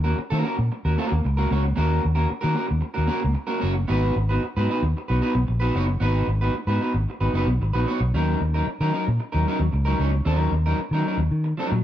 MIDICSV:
0, 0, Header, 1, 5, 480
1, 0, Start_track
1, 0, Key_signature, -6, "minor"
1, 0, Tempo, 530035
1, 1608, Time_signature, 4, 2, 24, 8
1, 10720, End_track
2, 0, Start_track
2, 0, Title_t, "Clean electric guitar"
2, 0, Program_c, 0, 27
2, 36, Note_on_c, 0, 70, 61
2, 41, Note_on_c, 0, 66, 53
2, 49, Note_on_c, 0, 58, 48
2, 49, Note_on_c, 0, 61, 50
2, 142, Note_off_c, 0, 58, 0
2, 153, Note_off_c, 0, 61, 0
2, 155, Note_off_c, 0, 66, 0
2, 161, Note_off_c, 0, 70, 0
2, 275, Note_on_c, 0, 70, 90
2, 283, Note_on_c, 0, 66, 68
2, 286, Note_on_c, 0, 61, 76
2, 291, Note_on_c, 0, 58, 70
2, 382, Note_off_c, 0, 58, 0
2, 386, Note_off_c, 0, 61, 0
2, 393, Note_on_c, 0, 58, 52
2, 394, Note_off_c, 0, 66, 0
2, 397, Note_on_c, 0, 61, 60
2, 399, Note_off_c, 0, 70, 0
2, 405, Note_on_c, 0, 66, 62
2, 410, Note_on_c, 0, 70, 65
2, 509, Note_off_c, 0, 70, 0
2, 515, Note_off_c, 0, 66, 0
2, 519, Note_off_c, 0, 61, 0
2, 520, Note_off_c, 0, 58, 0
2, 769, Note_on_c, 0, 70, 53
2, 773, Note_on_c, 0, 66, 49
2, 782, Note_on_c, 0, 61, 46
2, 785, Note_on_c, 0, 58, 41
2, 876, Note_off_c, 0, 58, 0
2, 880, Note_off_c, 0, 61, 0
2, 883, Note_off_c, 0, 66, 0
2, 887, Note_on_c, 0, 58, 82
2, 888, Note_off_c, 0, 70, 0
2, 890, Note_on_c, 0, 61, 80
2, 894, Note_on_c, 0, 66, 97
2, 899, Note_on_c, 0, 70, 84
2, 996, Note_off_c, 0, 70, 0
2, 1008, Note_off_c, 0, 66, 0
2, 1009, Note_off_c, 0, 61, 0
2, 1068, Note_off_c, 0, 58, 0
2, 1242, Note_on_c, 0, 70, 69
2, 1253, Note_on_c, 0, 66, 77
2, 1257, Note_on_c, 0, 61, 64
2, 1264, Note_on_c, 0, 58, 63
2, 1352, Note_off_c, 0, 58, 0
2, 1360, Note_off_c, 0, 61, 0
2, 1363, Note_on_c, 0, 58, 54
2, 1365, Note_off_c, 0, 66, 0
2, 1371, Note_on_c, 0, 61, 58
2, 1376, Note_on_c, 0, 66, 61
2, 1377, Note_off_c, 0, 70, 0
2, 1381, Note_on_c, 0, 73, 65
2, 1484, Note_off_c, 0, 66, 0
2, 1485, Note_off_c, 0, 58, 0
2, 1486, Note_off_c, 0, 73, 0
2, 1489, Note_off_c, 0, 61, 0
2, 1591, Note_on_c, 0, 58, 89
2, 1600, Note_on_c, 0, 61, 89
2, 1603, Note_on_c, 0, 66, 91
2, 1610, Note_on_c, 0, 70, 90
2, 1821, Note_off_c, 0, 58, 0
2, 1825, Note_off_c, 0, 61, 0
2, 1827, Note_off_c, 0, 66, 0
2, 1830, Note_off_c, 0, 70, 0
2, 1948, Note_on_c, 0, 70, 59
2, 1952, Note_on_c, 0, 66, 59
2, 1953, Note_on_c, 0, 61, 55
2, 1965, Note_on_c, 0, 58, 52
2, 2066, Note_off_c, 0, 58, 0
2, 2071, Note_off_c, 0, 61, 0
2, 2075, Note_off_c, 0, 66, 0
2, 2078, Note_off_c, 0, 70, 0
2, 2183, Note_on_c, 0, 70, 86
2, 2191, Note_on_c, 0, 66, 80
2, 2199, Note_on_c, 0, 61, 72
2, 2200, Note_on_c, 0, 58, 65
2, 2295, Note_off_c, 0, 58, 0
2, 2300, Note_off_c, 0, 61, 0
2, 2306, Note_off_c, 0, 66, 0
2, 2306, Note_on_c, 0, 58, 57
2, 2311, Note_on_c, 0, 61, 54
2, 2313, Note_off_c, 0, 70, 0
2, 2317, Note_on_c, 0, 66, 56
2, 2324, Note_on_c, 0, 70, 69
2, 2413, Note_off_c, 0, 70, 0
2, 2419, Note_off_c, 0, 66, 0
2, 2424, Note_off_c, 0, 61, 0
2, 2437, Note_off_c, 0, 58, 0
2, 2661, Note_on_c, 0, 70, 53
2, 2664, Note_on_c, 0, 66, 50
2, 2669, Note_on_c, 0, 61, 45
2, 2677, Note_on_c, 0, 58, 42
2, 2773, Note_off_c, 0, 58, 0
2, 2774, Note_off_c, 0, 61, 0
2, 2784, Note_on_c, 0, 58, 91
2, 2785, Note_on_c, 0, 61, 84
2, 2788, Note_off_c, 0, 66, 0
2, 2795, Note_off_c, 0, 70, 0
2, 2799, Note_on_c, 0, 66, 96
2, 2804, Note_on_c, 0, 70, 100
2, 2898, Note_off_c, 0, 70, 0
2, 2910, Note_off_c, 0, 66, 0
2, 2917, Note_off_c, 0, 61, 0
2, 2949, Note_off_c, 0, 58, 0
2, 3140, Note_on_c, 0, 70, 83
2, 3146, Note_on_c, 0, 66, 81
2, 3149, Note_on_c, 0, 61, 79
2, 3158, Note_on_c, 0, 58, 73
2, 3247, Note_off_c, 0, 58, 0
2, 3256, Note_off_c, 0, 61, 0
2, 3258, Note_on_c, 0, 58, 61
2, 3259, Note_off_c, 0, 66, 0
2, 3267, Note_on_c, 0, 61, 70
2, 3270, Note_on_c, 0, 66, 84
2, 3272, Note_off_c, 0, 70, 0
2, 3275, Note_on_c, 0, 73, 78
2, 3387, Note_off_c, 0, 66, 0
2, 3388, Note_off_c, 0, 73, 0
2, 3391, Note_off_c, 0, 61, 0
2, 3393, Note_off_c, 0, 58, 0
2, 3512, Note_on_c, 0, 59, 95
2, 3519, Note_on_c, 0, 63, 90
2, 3524, Note_on_c, 0, 66, 104
2, 3532, Note_on_c, 0, 71, 102
2, 3741, Note_off_c, 0, 59, 0
2, 3745, Note_off_c, 0, 63, 0
2, 3747, Note_off_c, 0, 66, 0
2, 3751, Note_off_c, 0, 71, 0
2, 3887, Note_on_c, 0, 71, 55
2, 3898, Note_on_c, 0, 66, 61
2, 3900, Note_on_c, 0, 63, 52
2, 3908, Note_on_c, 0, 59, 54
2, 4000, Note_off_c, 0, 59, 0
2, 4008, Note_off_c, 0, 71, 0
2, 4011, Note_off_c, 0, 63, 0
2, 4013, Note_off_c, 0, 66, 0
2, 4135, Note_on_c, 0, 71, 71
2, 4143, Note_on_c, 0, 63, 77
2, 4144, Note_on_c, 0, 66, 84
2, 4147, Note_on_c, 0, 59, 70
2, 4236, Note_off_c, 0, 59, 0
2, 4247, Note_on_c, 0, 59, 57
2, 4250, Note_off_c, 0, 63, 0
2, 4253, Note_off_c, 0, 66, 0
2, 4257, Note_off_c, 0, 71, 0
2, 4261, Note_on_c, 0, 63, 67
2, 4264, Note_on_c, 0, 66, 61
2, 4268, Note_on_c, 0, 71, 70
2, 4365, Note_off_c, 0, 71, 0
2, 4368, Note_off_c, 0, 59, 0
2, 4371, Note_off_c, 0, 66, 0
2, 4374, Note_off_c, 0, 63, 0
2, 4603, Note_on_c, 0, 71, 50
2, 4613, Note_on_c, 0, 66, 53
2, 4617, Note_on_c, 0, 63, 47
2, 4618, Note_on_c, 0, 59, 50
2, 4710, Note_off_c, 0, 59, 0
2, 4717, Note_off_c, 0, 63, 0
2, 4720, Note_off_c, 0, 66, 0
2, 4721, Note_on_c, 0, 59, 83
2, 4726, Note_off_c, 0, 71, 0
2, 4728, Note_on_c, 0, 63, 88
2, 4731, Note_on_c, 0, 66, 95
2, 4739, Note_on_c, 0, 71, 93
2, 4830, Note_off_c, 0, 71, 0
2, 4835, Note_off_c, 0, 66, 0
2, 4844, Note_off_c, 0, 63, 0
2, 4878, Note_off_c, 0, 59, 0
2, 5070, Note_on_c, 0, 71, 77
2, 5083, Note_on_c, 0, 66, 78
2, 5086, Note_on_c, 0, 63, 65
2, 5089, Note_on_c, 0, 59, 72
2, 5195, Note_off_c, 0, 59, 0
2, 5196, Note_off_c, 0, 63, 0
2, 5202, Note_off_c, 0, 66, 0
2, 5205, Note_on_c, 0, 59, 69
2, 5207, Note_on_c, 0, 63, 70
2, 5213, Note_on_c, 0, 66, 69
2, 5218, Note_off_c, 0, 71, 0
2, 5221, Note_on_c, 0, 73, 79
2, 5307, Note_off_c, 0, 66, 0
2, 5309, Note_off_c, 0, 73, 0
2, 5314, Note_off_c, 0, 63, 0
2, 5327, Note_off_c, 0, 59, 0
2, 5436, Note_on_c, 0, 59, 85
2, 5446, Note_on_c, 0, 63, 85
2, 5452, Note_on_c, 0, 66, 85
2, 5454, Note_on_c, 0, 71, 90
2, 5663, Note_off_c, 0, 59, 0
2, 5668, Note_off_c, 0, 63, 0
2, 5671, Note_off_c, 0, 66, 0
2, 5672, Note_off_c, 0, 71, 0
2, 5806, Note_on_c, 0, 71, 56
2, 5814, Note_on_c, 0, 66, 63
2, 5818, Note_on_c, 0, 63, 56
2, 5821, Note_on_c, 0, 59, 53
2, 5918, Note_off_c, 0, 59, 0
2, 5918, Note_off_c, 0, 63, 0
2, 5922, Note_off_c, 0, 66, 0
2, 5923, Note_off_c, 0, 71, 0
2, 6042, Note_on_c, 0, 71, 70
2, 6050, Note_on_c, 0, 66, 70
2, 6055, Note_on_c, 0, 63, 69
2, 6064, Note_on_c, 0, 59, 65
2, 6156, Note_off_c, 0, 63, 0
2, 6158, Note_off_c, 0, 59, 0
2, 6167, Note_off_c, 0, 66, 0
2, 6167, Note_on_c, 0, 63, 51
2, 6168, Note_off_c, 0, 71, 0
2, 6169, Note_on_c, 0, 59, 56
2, 6178, Note_on_c, 0, 66, 54
2, 6179, Note_on_c, 0, 71, 51
2, 6274, Note_off_c, 0, 71, 0
2, 6279, Note_off_c, 0, 66, 0
2, 6287, Note_off_c, 0, 63, 0
2, 6288, Note_off_c, 0, 59, 0
2, 6525, Note_on_c, 0, 71, 53
2, 6527, Note_on_c, 0, 66, 51
2, 6534, Note_on_c, 0, 59, 41
2, 6535, Note_on_c, 0, 63, 44
2, 6634, Note_off_c, 0, 59, 0
2, 6645, Note_on_c, 0, 59, 76
2, 6646, Note_off_c, 0, 63, 0
2, 6646, Note_off_c, 0, 71, 0
2, 6647, Note_off_c, 0, 66, 0
2, 6657, Note_on_c, 0, 63, 87
2, 6659, Note_on_c, 0, 66, 86
2, 6668, Note_on_c, 0, 71, 84
2, 6763, Note_off_c, 0, 71, 0
2, 6766, Note_off_c, 0, 66, 0
2, 6770, Note_off_c, 0, 63, 0
2, 6799, Note_off_c, 0, 59, 0
2, 7004, Note_on_c, 0, 71, 82
2, 7015, Note_on_c, 0, 66, 75
2, 7018, Note_on_c, 0, 63, 70
2, 7026, Note_on_c, 0, 59, 62
2, 7109, Note_off_c, 0, 59, 0
2, 7116, Note_off_c, 0, 63, 0
2, 7120, Note_on_c, 0, 59, 64
2, 7126, Note_off_c, 0, 66, 0
2, 7127, Note_on_c, 0, 63, 63
2, 7132, Note_off_c, 0, 71, 0
2, 7136, Note_on_c, 0, 73, 76
2, 7137, Note_on_c, 0, 66, 73
2, 7243, Note_off_c, 0, 59, 0
2, 7246, Note_off_c, 0, 66, 0
2, 7247, Note_off_c, 0, 63, 0
2, 7251, Note_off_c, 0, 73, 0
2, 7375, Note_on_c, 0, 61, 87
2, 7378, Note_on_c, 0, 54, 78
2, 7385, Note_on_c, 0, 63, 80
2, 7395, Note_on_c, 0, 70, 83
2, 7592, Note_off_c, 0, 61, 0
2, 7593, Note_off_c, 0, 54, 0
2, 7597, Note_off_c, 0, 63, 0
2, 7602, Note_off_c, 0, 70, 0
2, 7736, Note_on_c, 0, 70, 64
2, 7745, Note_on_c, 0, 63, 60
2, 7747, Note_on_c, 0, 61, 46
2, 7757, Note_on_c, 0, 54, 50
2, 7839, Note_off_c, 0, 54, 0
2, 7845, Note_off_c, 0, 61, 0
2, 7847, Note_off_c, 0, 70, 0
2, 7852, Note_off_c, 0, 63, 0
2, 7976, Note_on_c, 0, 70, 85
2, 7979, Note_on_c, 0, 63, 69
2, 7987, Note_on_c, 0, 61, 74
2, 7989, Note_on_c, 0, 54, 62
2, 8071, Note_off_c, 0, 54, 0
2, 8082, Note_off_c, 0, 61, 0
2, 8082, Note_on_c, 0, 54, 54
2, 8084, Note_off_c, 0, 63, 0
2, 8092, Note_off_c, 0, 70, 0
2, 8093, Note_on_c, 0, 61, 64
2, 8094, Note_on_c, 0, 63, 63
2, 8103, Note_on_c, 0, 70, 65
2, 8200, Note_off_c, 0, 70, 0
2, 8203, Note_off_c, 0, 63, 0
2, 8205, Note_off_c, 0, 54, 0
2, 8210, Note_off_c, 0, 61, 0
2, 8443, Note_on_c, 0, 70, 57
2, 8445, Note_on_c, 0, 63, 49
2, 8454, Note_on_c, 0, 61, 45
2, 8459, Note_on_c, 0, 54, 48
2, 8563, Note_off_c, 0, 54, 0
2, 8565, Note_off_c, 0, 70, 0
2, 8566, Note_off_c, 0, 63, 0
2, 8570, Note_off_c, 0, 61, 0
2, 8574, Note_on_c, 0, 54, 75
2, 8581, Note_on_c, 0, 61, 80
2, 8587, Note_on_c, 0, 63, 82
2, 8590, Note_on_c, 0, 70, 85
2, 8681, Note_off_c, 0, 70, 0
2, 8689, Note_off_c, 0, 63, 0
2, 8696, Note_off_c, 0, 61, 0
2, 8724, Note_off_c, 0, 54, 0
2, 8921, Note_on_c, 0, 70, 88
2, 8930, Note_on_c, 0, 63, 77
2, 8938, Note_on_c, 0, 54, 70
2, 8939, Note_on_c, 0, 61, 71
2, 9032, Note_off_c, 0, 54, 0
2, 9039, Note_off_c, 0, 61, 0
2, 9043, Note_on_c, 0, 54, 56
2, 9044, Note_off_c, 0, 63, 0
2, 9050, Note_on_c, 0, 61, 67
2, 9055, Note_on_c, 0, 63, 59
2, 9061, Note_off_c, 0, 70, 0
2, 9064, Note_on_c, 0, 73, 66
2, 9158, Note_off_c, 0, 73, 0
2, 9161, Note_off_c, 0, 61, 0
2, 9162, Note_off_c, 0, 63, 0
2, 9165, Note_off_c, 0, 54, 0
2, 9284, Note_on_c, 0, 54, 86
2, 9287, Note_on_c, 0, 61, 96
2, 9297, Note_on_c, 0, 63, 95
2, 9300, Note_on_c, 0, 70, 102
2, 9507, Note_off_c, 0, 54, 0
2, 9508, Note_off_c, 0, 61, 0
2, 9513, Note_off_c, 0, 63, 0
2, 9514, Note_off_c, 0, 70, 0
2, 9652, Note_on_c, 0, 70, 73
2, 9658, Note_on_c, 0, 63, 65
2, 9665, Note_on_c, 0, 61, 61
2, 9668, Note_on_c, 0, 54, 54
2, 9769, Note_off_c, 0, 54, 0
2, 9770, Note_off_c, 0, 70, 0
2, 9771, Note_off_c, 0, 61, 0
2, 9772, Note_off_c, 0, 63, 0
2, 9898, Note_on_c, 0, 70, 66
2, 9908, Note_on_c, 0, 63, 74
2, 9912, Note_on_c, 0, 61, 64
2, 9914, Note_on_c, 0, 54, 65
2, 10010, Note_off_c, 0, 54, 0
2, 10020, Note_on_c, 0, 54, 54
2, 10023, Note_off_c, 0, 61, 0
2, 10026, Note_off_c, 0, 70, 0
2, 10028, Note_off_c, 0, 63, 0
2, 10034, Note_on_c, 0, 61, 56
2, 10037, Note_on_c, 0, 70, 52
2, 10038, Note_on_c, 0, 63, 57
2, 10119, Note_off_c, 0, 70, 0
2, 10123, Note_off_c, 0, 63, 0
2, 10130, Note_off_c, 0, 61, 0
2, 10134, Note_off_c, 0, 54, 0
2, 10482, Note_on_c, 0, 54, 83
2, 10495, Note_on_c, 0, 61, 84
2, 10500, Note_on_c, 0, 63, 85
2, 10504, Note_on_c, 0, 70, 99
2, 10602, Note_off_c, 0, 70, 0
2, 10608, Note_off_c, 0, 63, 0
2, 10614, Note_off_c, 0, 61, 0
2, 10666, Note_off_c, 0, 54, 0
2, 10720, End_track
3, 0, Start_track
3, 0, Title_t, "Fingered electric bass"
3, 0, Program_c, 1, 33
3, 0, Note_on_c, 1, 39, 100
3, 118, Note_off_c, 1, 39, 0
3, 288, Note_on_c, 1, 51, 93
3, 382, Note_off_c, 1, 51, 0
3, 531, Note_on_c, 1, 46, 87
3, 624, Note_off_c, 1, 46, 0
3, 769, Note_on_c, 1, 39, 88
3, 863, Note_off_c, 1, 39, 0
3, 1013, Note_on_c, 1, 39, 92
3, 1106, Note_off_c, 1, 39, 0
3, 1130, Note_on_c, 1, 37, 81
3, 1318, Note_off_c, 1, 37, 0
3, 1369, Note_on_c, 1, 37, 89
3, 1557, Note_off_c, 1, 37, 0
3, 1607, Note_on_c, 1, 39, 88
3, 1796, Note_off_c, 1, 39, 0
3, 1856, Note_on_c, 1, 39, 99
3, 2042, Note_off_c, 1, 39, 0
3, 2209, Note_on_c, 1, 51, 83
3, 2303, Note_off_c, 1, 51, 0
3, 2453, Note_on_c, 1, 39, 86
3, 2546, Note_off_c, 1, 39, 0
3, 2696, Note_on_c, 1, 39, 83
3, 2788, Note_off_c, 1, 39, 0
3, 2938, Note_on_c, 1, 37, 86
3, 3029, Note_off_c, 1, 37, 0
3, 3290, Note_on_c, 1, 30, 80
3, 3478, Note_off_c, 1, 30, 0
3, 3529, Note_on_c, 1, 32, 105
3, 3718, Note_off_c, 1, 32, 0
3, 3768, Note_on_c, 1, 32, 99
3, 3957, Note_off_c, 1, 32, 0
3, 4137, Note_on_c, 1, 44, 90
3, 4228, Note_off_c, 1, 44, 0
3, 4370, Note_on_c, 1, 39, 80
3, 4464, Note_off_c, 1, 39, 0
3, 4617, Note_on_c, 1, 35, 87
3, 4708, Note_off_c, 1, 35, 0
3, 4845, Note_on_c, 1, 35, 79
3, 4941, Note_off_c, 1, 35, 0
3, 4969, Note_on_c, 1, 34, 73
3, 5158, Note_off_c, 1, 34, 0
3, 5209, Note_on_c, 1, 30, 82
3, 5398, Note_off_c, 1, 30, 0
3, 5443, Note_on_c, 1, 32, 102
3, 5634, Note_off_c, 1, 32, 0
3, 5681, Note_on_c, 1, 32, 98
3, 5873, Note_off_c, 1, 32, 0
3, 6040, Note_on_c, 1, 44, 85
3, 6138, Note_off_c, 1, 44, 0
3, 6287, Note_on_c, 1, 32, 75
3, 6382, Note_off_c, 1, 32, 0
3, 6528, Note_on_c, 1, 32, 93
3, 6622, Note_off_c, 1, 32, 0
3, 6641, Note_on_c, 1, 30, 79
3, 6738, Note_off_c, 1, 30, 0
3, 6761, Note_on_c, 1, 35, 85
3, 6858, Note_off_c, 1, 35, 0
3, 6888, Note_on_c, 1, 32, 76
3, 6982, Note_off_c, 1, 32, 0
3, 7006, Note_on_c, 1, 34, 72
3, 7101, Note_off_c, 1, 34, 0
3, 7249, Note_on_c, 1, 35, 81
3, 7343, Note_off_c, 1, 35, 0
3, 7370, Note_on_c, 1, 39, 108
3, 7558, Note_off_c, 1, 39, 0
3, 7612, Note_on_c, 1, 39, 95
3, 7799, Note_off_c, 1, 39, 0
3, 7974, Note_on_c, 1, 51, 80
3, 8066, Note_off_c, 1, 51, 0
3, 8222, Note_on_c, 1, 46, 85
3, 8311, Note_off_c, 1, 46, 0
3, 8462, Note_on_c, 1, 39, 86
3, 8551, Note_off_c, 1, 39, 0
3, 8690, Note_on_c, 1, 39, 85
3, 8784, Note_off_c, 1, 39, 0
3, 8812, Note_on_c, 1, 37, 83
3, 8999, Note_off_c, 1, 37, 0
3, 9049, Note_on_c, 1, 37, 87
3, 9237, Note_off_c, 1, 37, 0
3, 9292, Note_on_c, 1, 39, 105
3, 9479, Note_off_c, 1, 39, 0
3, 9523, Note_on_c, 1, 39, 90
3, 9713, Note_off_c, 1, 39, 0
3, 9881, Note_on_c, 1, 51, 94
3, 9978, Note_off_c, 1, 51, 0
3, 10121, Note_on_c, 1, 39, 77
3, 10218, Note_off_c, 1, 39, 0
3, 10246, Note_on_c, 1, 51, 94
3, 10435, Note_off_c, 1, 51, 0
3, 10611, Note_on_c, 1, 46, 84
3, 10704, Note_off_c, 1, 46, 0
3, 10720, End_track
4, 0, Start_track
4, 0, Title_t, "Muted clean electric guitar strokes"
4, 153, Note_on_c, 9, 29, 47
4, 244, Note_off_c, 9, 29, 0
4, 520, Note_on_c, 9, 29, 42
4, 611, Note_off_c, 9, 29, 0
4, 650, Note_on_c, 9, 29, 45
4, 740, Note_off_c, 9, 29, 0
4, 1007, Note_on_c, 9, 29, 40
4, 1097, Note_off_c, 9, 29, 0
4, 1128, Note_on_c, 9, 29, 41
4, 1219, Note_off_c, 9, 29, 0
4, 1490, Note_on_c, 9, 29, 57
4, 1581, Note_off_c, 9, 29, 0
4, 1838, Note_on_c, 9, 29, 33
4, 1929, Note_off_c, 9, 29, 0
4, 2077, Note_on_c, 9, 29, 36
4, 2168, Note_off_c, 9, 29, 0
4, 2424, Note_on_c, 9, 29, 57
4, 2515, Note_off_c, 9, 29, 0
4, 2543, Note_on_c, 9, 29, 44
4, 2633, Note_off_c, 9, 29, 0
4, 2909, Note_on_c, 9, 29, 48
4, 2999, Note_off_c, 9, 29, 0
4, 3022, Note_on_c, 9, 29, 41
4, 3112, Note_off_c, 9, 29, 0
4, 3392, Note_on_c, 9, 29, 55
4, 3482, Note_off_c, 9, 29, 0
4, 3768, Note_on_c, 9, 29, 37
4, 3858, Note_off_c, 9, 29, 0
4, 4011, Note_on_c, 9, 29, 38
4, 4102, Note_off_c, 9, 29, 0
4, 4376, Note_on_c, 9, 29, 45
4, 4467, Note_off_c, 9, 29, 0
4, 4501, Note_on_c, 9, 29, 39
4, 4592, Note_off_c, 9, 29, 0
4, 4841, Note_on_c, 9, 29, 50
4, 4931, Note_off_c, 9, 29, 0
4, 4955, Note_on_c, 9, 29, 36
4, 5045, Note_off_c, 9, 29, 0
4, 5312, Note_on_c, 9, 29, 51
4, 5403, Note_off_c, 9, 29, 0
4, 5688, Note_on_c, 9, 29, 46
4, 5778, Note_off_c, 9, 29, 0
4, 5929, Note_on_c, 9, 29, 45
4, 6019, Note_off_c, 9, 29, 0
4, 6285, Note_on_c, 9, 29, 50
4, 6376, Note_off_c, 9, 29, 0
4, 6418, Note_on_c, 9, 29, 40
4, 6509, Note_off_c, 9, 29, 0
4, 6774, Note_on_c, 9, 29, 43
4, 6864, Note_off_c, 9, 29, 0
4, 6898, Note_on_c, 9, 29, 47
4, 6988, Note_off_c, 9, 29, 0
4, 7254, Note_on_c, 9, 29, 47
4, 7345, Note_off_c, 9, 29, 0
4, 7613, Note_on_c, 9, 29, 40
4, 7704, Note_off_c, 9, 29, 0
4, 7849, Note_on_c, 9, 29, 30
4, 7940, Note_off_c, 9, 29, 0
4, 8211, Note_on_c, 9, 29, 34
4, 8302, Note_off_c, 9, 29, 0
4, 8330, Note_on_c, 9, 29, 46
4, 8420, Note_off_c, 9, 29, 0
4, 8692, Note_on_c, 9, 29, 46
4, 8782, Note_off_c, 9, 29, 0
4, 8807, Note_on_c, 9, 29, 41
4, 8898, Note_off_c, 9, 29, 0
4, 9162, Note_on_c, 9, 29, 48
4, 9253, Note_off_c, 9, 29, 0
4, 9541, Note_on_c, 9, 29, 40
4, 9631, Note_off_c, 9, 29, 0
4, 9780, Note_on_c, 9, 29, 41
4, 9871, Note_off_c, 9, 29, 0
4, 10129, Note_on_c, 9, 29, 53
4, 10220, Note_off_c, 9, 29, 0
4, 10362, Note_on_c, 9, 29, 46
4, 10453, Note_off_c, 9, 29, 0
4, 10613, Note_on_c, 9, 29, 47
4, 10704, Note_off_c, 9, 29, 0
4, 10720, End_track
5, 0, Start_track
5, 0, Title_t, "Muted fingered electric bass strokes"
5, 171, Note_on_c, 9, 29, 43
5, 261, Note_off_c, 9, 29, 0
5, 2093, Note_on_c, 9, 29, 45
5, 2184, Note_off_c, 9, 29, 0
5, 7852, Note_on_c, 9, 29, 44
5, 7943, Note_off_c, 9, 29, 0
5, 10720, End_track
0, 0, End_of_file